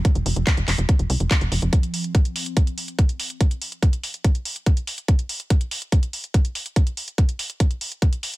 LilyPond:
<<
  \new Staff \with { instrumentName = "Synth drone" } { \clef bass \time 4/4 \tempo 4 = 143 <f c'>1 | r1 | r1 | r1 |
r1 | }
  \new Staff \with { instrumentName = "Analog synth bass" } { \clef bass \time 4/4 r16 f,,16 f,,16 f,,16 r16 f,,16 f,,16 f,,16 r16 f,,16 c,16 f,,16 r16 f,,16 f,,16 f,,16 | r1 | r1 | r1 |
r1 | }
  \new DrumStaff \with { instrumentName = "Drums" } \drummode { \time 4/4 <hh bd>16 hh16 hho16 hh16 <hc hh bd>16 hh16 <hc hho>16 hh16 <hh bd>16 hh16 hho16 hh16 <hc hh bd>16 hh16 hho16 hh16 | <hh bd>16 hh16 hho16 hh16 <hh bd>16 hh16 hho16 hh16 <hh bd>16 hh16 hho16 hh16 <hh bd>16 hh16 hho16 hh16 | <hh bd>16 hh16 hho16 hh16 <hh bd>16 hh16 hho16 hh16 <hh bd>16 hh16 hho16 hh16 <hh bd>16 hh16 hho16 hh16 | <hh bd>16 hh16 hho16 hh16 <hh bd>16 hh16 hho16 hh16 <hh bd>16 hh16 hho16 hh16 <hh bd>16 hh16 hho16 hh16 |
<hh bd>16 hh16 hho16 hh16 <hh bd>16 hh16 hho16 hh16 <hh bd>16 hh16 hho16 hh16 <hh bd>16 hh16 hho16 hh16 | }
>>